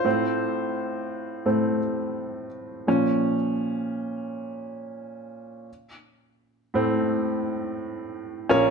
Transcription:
upright piano
Already playing: F4 C5
0.04 A2 A3 C4
1.45 A2 A3 C4
2.87 A#2 F3 C#4
6.74 A2 A3 C4
8.49 A#1 A#2 C#4 F4 A#4 C#5

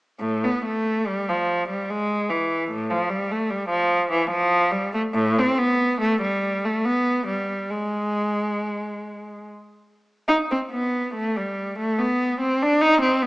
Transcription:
cello
0.20 A2
0.44 B3
0.65 A3
1.07 G3
1.29 F3
1.69 G3
1.90 G#3
2.29 E3
2.71 A2
2.90 F3
3.09 G3
3.32 A3
3.50 G3
3.70 F3
4.12 E3
4.31 F3
4.71 G3
4.94 A3
5.14 A2
5.38 C4
5.58 B3
6.01 A3
6.22 G3
6.65 A3
6.85 B3
7.27 G3
7.70 G#3
10.28 D#4
10.51 C4
10.72 B3
11.14 A3
11.37 G3
11.79 A3
11.98 B3
12.41 C4
12.62 D4
12.81 D#4
13.01 C4
13.22 B3

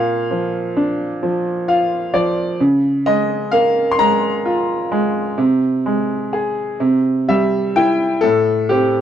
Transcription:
grand piano
Already playing: A#2 F5
0.31 F3
0.77 D4
1.23 F3
1.68 F4 F5
2.13 F3 D5
2.60 C#3
3.06 G#3 D#5
3.51 A#3 F5
3.91 C6
3.99 G#3 A#5
4.45 F4
4.92 G#3
5.38 C3
5.86 G#3
6.33 G#4
6.80 C3
7.28 G3 E5
7.76 E4 G5
8.21 A2 A4
8.69 C4 G4

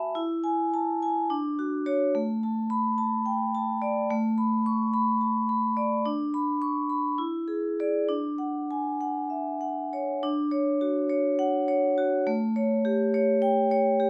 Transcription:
vibraphone
Already playing: F#4 E5 G#5 A5 B5
0.15 E4
0.44 G#5
0.74 A5
1.03 G#5
1.30 D4
1.59 F#4
1.86 F#4 C#5
2.15 A3
2.43 A5
2.70 B5
2.98 A5
3.26 G5
3.55 A5
3.82 D5
4.10 A3
4.38 B5
4.66 C#6
4.94 B5
5.21 A5
5.49 B5
5.77 D5
6.05 D4
6.34 B5
6.62 C#6
6.89 B5
7.18 E4
7.48 G#4
7.80 G#4 D5
8.09 D4
8.38 F#5
8.71 G#5
9.01 F#5
9.30 E5
9.61 F#5
9.93 C#5
10.23 D4
10.51 C#5
10.81 F#4
11.10 C#5
11.39 F#5
11.68 C#5
11.98 F#4
12.27 A3
12.56 C#5
12.85 G4
13.14 C#5
13.42 G5
13.71 C#5
14.00 G4

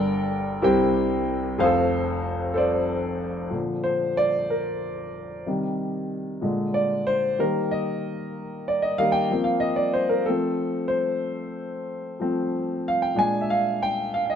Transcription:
grand piano
Already playing: G1 G2 A#4 D5 G5
0.62 C2 C3 E4 G4 A#4 C5 G5
1.58 F1 F2 G#4 C5 F5
1.64 A4
2.54 A4 C5 D5
3.50 A#2 D3 F3
3.84 C5
4.17 D5
4.50 A#4
5.46 C3 D#3 G3
6.41 A#2 D3 G#3
6.74 D5
7.07 C5
7.39 D#3 G3 A#3 A#4
7.71 D#5
8.68 D5
8.82 D#5
8.98 D#3 G3 A#3 F5
9.12 G5
9.30 F3 A#3 C4
9.44 F5
9.60 D#5
9.76 D5
9.93 C5
10.09 A#4
10.26 F3 A3 C4 A4
10.88 C5
12.20 F3 A3 C4
12.88 F5
13.02 G5
13.15 A#2 G#3 D4 G#5
13.41 E5
13.50 F5
13.83 G5
14.14 F5
14.26 D#5 F5

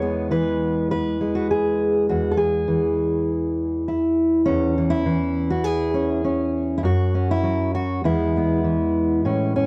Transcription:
steel-string acoustic guitar
Already playing: E2 E3 C#5
0.02 G#3 B3
0.31 E3 B4
0.91 B4
1.21 G#3
1.35 F#4
1.51 G#4
2.10 E2 F#4
2.32 A4
2.37 G#4
2.68 E3
3.88 E4
4.46 E2 C#4
4.78 E3
4.90 E4
5.06 E3
5.50 F#4
5.64 G#4
5.94 C#4
6.24 C#4
6.78 E4
6.83 F#2 F#4
7.15 C#4
7.31 E4
7.43 F#3
7.75 F#4
8.04 E2 E3 G#3 B3 E4
8.36 G#3 B3
8.64 E3
9.25 A2 C#4
9.56 C#4

